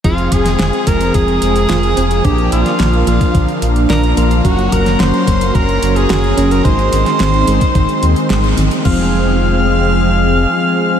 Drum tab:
CC |----------------|----------------|----------------|----------------|
HH |xxxxxxxxxxxxxxxx|xxxxxxxxxxxxxxxx|xxxxxxxxxxxxxxxx|xxxxxxxxxxxxxxxx|
SD |---oo-------o---|---oo-------o---|---oo-------o---|---oo-------o---|
BD |o-o---o-o-------|o------oo-------|o-o---o-o-------|o------oo-------|

CC |x---------------|
HH |----------------|
SD |----------------|
BD |o---------------|